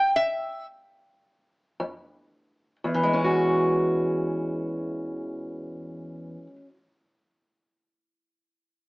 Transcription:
Already playing: resonator guitar played with a steel bar G5
0.16 resonator guitar played with a steel bar E5
1.80 steel-string acoustic guitar F2
2.84 steel-string acoustic guitar E2
2.94 steel-string acoustic guitar E3
3.03 steel-string acoustic guitar G#3
3.13 steel-string acoustic guitar C#4
3.24 steel-string acoustic guitar F#4

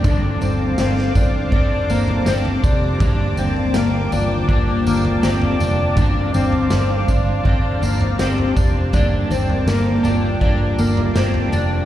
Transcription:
Already playing: analog synth pad A5 D6
0.02 fingered electric bass G1, clean electric guitar G2 D3 F3, twelve-string acoustic guitar D4, vibraphone A4, analog synth pad C5 F5, kick, floor tom, tambourine
0.07 clean electric guitar C4 D4 A4
0.41 fingered electric bass G1, twelve-string acoustic guitar C4, tambourine
0.78 fingered electric bass G1, twelve-string acoustic guitar C4, snare, tambourine
1.15 fingered electric bass G1, twelve-string acoustic guitar D4, kick, floor tom, tambourine
1.51 fingered electric bass G1, clean electric guitar F3 C4 D4, twelve-string acoustic guitar D4, kick
1.56 clean electric guitar A4
1.88 fingered electric bass G1, twelve-string acoustic guitar A#3, tambourine
2.08 floor tom
2.26 fingered electric bass G1, clean electric guitar F3 C4 D4, twelve-string acoustic guitar C4, snare, tambourine
2.30 clean electric guitar A4
2.45 floor tom
2.64 fingered electric bass F1, twelve-string acoustic guitar D4, vibraphone G4, kick, floor tom, tambourine
2.89 vibraphone C5
2.99 fingered electric bass G1, clean electric guitar G2 D3 G3, analog synth pad A#3 G5, twelve-string acoustic guitar D4, kick, floor tom, tambourine
3.04 clean electric guitar A#3 D4 A4
3.10 vibraphone D5
3.37 fingered electric bass G1, twelve-string acoustic guitar C4, tambourine
3.56 floor tom
3.74 fingered electric bass G1, twelve-string acoustic guitar A#3, snare, tambourine
4.12 fingered electric bass G1, twelve-string acoustic guitar D4, vibraphone F4, floor tom, tambourine
4.38 vibraphone C5
4.48 fingered electric bass G1, clean electric guitar G3 A#3 D4, twelve-string acoustic guitar D4, kick
4.53 clean electric guitar A4
4.60 vibraphone D5
4.85 fingered electric bass G1, twelve-string acoustic guitar A#3, tambourine
5.05 floor tom
5.22 fingered electric bass G1, clean electric guitar G3 A#3 D4, twelve-string acoustic guitar C4, snare, tambourine
5.27 clean electric guitar A4
5.42 floor tom
5.60 fingered electric bass F1, twelve-string acoustic guitar D4, tambourine
5.95 fingered electric bass G1, clean electric guitar G2 D3 F3, twelve-string acoustic guitar D4, analog synth pad C5 F5, kick, floor tom, tambourine
6.01 clean electric guitar C4 D4 A4
6.34 fingered electric bass G1, twelve-string acoustic guitar C4, tambourine
6.52 floor tom
6.70 fingered electric bass G1, twelve-string acoustic guitar C4, snare, tambourine
7.08 fingered electric bass G1, twelve-string acoustic guitar D4, kick, floor tom, tambourine
7.43 fingered electric bass G1, clean electric guitar F3 C4, twelve-string acoustic guitar D4, kick
7.47 clean electric guitar D4 A4
7.82 fingered electric bass G1, twelve-string acoustic guitar A#3, tambourine
8.01 floor tom
8.18 fingered electric bass G1, clean electric guitar F3 C4 D4, twelve-string acoustic guitar C4, vibraphone G4, snare, tambourine
8.23 clean electric guitar A4
8.38 floor tom
8.56 fingered electric bass F1, twelve-string acoustic guitar D4, kick, tambourine
8.93 fingered electric bass G1, clean electric guitar G2 D3 G3 A#3 D4 A4, analog synth pad A#3 G5 D6, twelve-string acoustic guitar D4, kick, floor tom, tambourine
9.30 fingered electric bass G1, twelve-string acoustic guitar C4, tambourine
9.50 floor tom
9.66 fingered electric bass G1, twelve-string acoustic guitar A#3, snare, tambourine
10.03 fingered electric bass G1, clean electric guitar A#3 D4 A4, twelve-string acoustic guitar D4, vibraphone F4, floor tom, tambourine
10.08 clean electric guitar G3
10.40 fingered electric bass G1, clean electric guitar G3 A#3 D4, twelve-string acoustic guitar D4, kick
10.45 clean electric guitar A4
10.78 fingered electric bass G1, twelve-string acoustic guitar A#3, tambourine
10.97 floor tom
11.14 fingered electric bass G1, clean electric guitar G3 A#3 D4, twelve-string acoustic guitar C4, snare, tambourine
11.19 clean electric guitar A4
11.34 floor tom
11.52 fingered electric bass F1, twelve-string acoustic guitar D4, tambourine

